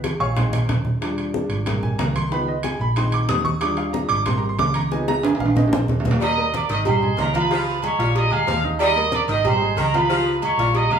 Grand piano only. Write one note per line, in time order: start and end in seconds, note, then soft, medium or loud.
0.20 0.36 C#5 medium
0.20 0.35 F5 medium
0.20 0.36 G#5 medium
0.20 0.36 C#6 loud
0.36 0.58 D#3 medium
0.36 0.58 G#3 soft
0.36 0.59 C4 medium
0.36 0.67 C5 medium
0.36 0.67 F5 medium
0.36 0.67 G#5 medium
0.36 0.67 C6 medium
1.01 1.63 F3 medium
1.01 1.63 G3 soft
1.01 1.64 D4 medium
1.66 2.28 C3 medium
1.66 2.29 G3 medium
1.66 2.29 A#3 medium
1.83 1.99 G#5 medium
1.98 2.15 A#5 medium
2.16 2.31 C6 loud
2.31 2.53 D#3 medium
2.31 2.53 F3 medium
2.31 2.54 B3 medium
2.31 2.48 B5 loud
2.48 2.64 D#5 medium
2.64 2.80 G#5 loud
2.81 2.96 B5 loud
2.97 3.43 D#3 medium
2.97 3.44 G#3 medium
2.97 3.44 C4 medium
2.97 3.13 C6 medium
3.14 3.29 D6 medium
3.29 3.45 D#6 loud
3.45 3.61 C#6 loud
3.61 4.23 F3 medium
3.61 4.23 G3 soft
3.61 4.24 D4 medium
3.61 3.77 D6 loud
3.78 3.93 F5 medium
3.93 4.09 A#5 medium
4.09 4.25 D6 loud
4.26 4.48 G3 medium
4.26 4.48 A#3 medium
4.26 4.49 C4 medium
4.26 4.37 C6 medium
4.38 4.48 A#5 medium
4.49 4.59 C6 medium
4.59 4.75 D6 loud
4.75 4.91 A#5 loud
4.91 5.13 F3 medium
4.91 5.13 B3 medium
4.91 5.14 D#4 medium
4.91 5.07 G#5 medium
5.08 5.24 A#5 loud
5.24 5.40 G#5 medium
5.40 5.56 F5 medium
5.56 5.77 G#3 medium
5.56 5.78 C4 medium
5.56 5.78 D#4 medium
5.56 5.72 D#5 medium
5.73 5.82 C5 medium
6.37 6.64 A#3 medium
6.37 6.64 A#4 medium
6.37 6.64 A#5 medium
6.70 6.83 D#4 medium
6.70 6.83 D#5 medium
6.70 6.83 D#6 medium
6.86 6.99 G3 medium
6.86 7.00 G4 medium
6.86 7.00 G5 medium
7.03 7.29 G#3 medium
7.03 7.29 G#4 medium
7.03 7.29 G#5 medium
7.35 7.48 F3 medium
7.35 7.48 F4 medium
7.35 7.48 F5 medium
7.50 7.77 F3 medium
7.50 7.77 F4 medium
7.50 7.78 F5 medium
7.83 7.96 G#3 medium
7.83 7.97 G#4 medium
7.83 7.97 G#5 medium
7.99 8.26 F4 medium
7.99 8.26 F5 medium
7.99 8.26 F6 medium
8.31 8.58 G#3 medium
8.31 8.58 G#4 medium
8.31 8.58 G#5 medium
8.64 8.90 D#4 medium
8.64 8.91 D#5 medium
8.64 8.91 D#6 medium
8.96 9.23 A#3 medium
8.96 9.23 A#4 medium
8.96 9.23 A#5 medium
9.29 9.42 D#4 medium
9.29 9.42 D#5 medium
9.29 9.42 D#6 medium
9.45 9.58 G3 medium
9.45 9.59 G4 medium
9.45 9.59 G5 medium
9.62 9.88 G#3 medium
9.62 9.88 G#4 medium
9.62 9.88 G#5 medium
9.95 10.07 F3 medium
9.95 10.07 F4 medium
9.95 10.08 F5 medium
10.10 10.37 F3 medium
10.10 10.37 F4 medium
10.10 10.37 F5 medium
10.42 10.56 G#3 medium
10.42 10.56 G#4 medium
10.42 10.56 G#5 medium
10.59 10.85 F4 medium
10.59 10.85 F5 medium
10.59 10.86 F6 medium
10.91 10.99 G#3 medium
10.91 10.99 G#4 medium
10.91 10.99 G#5 medium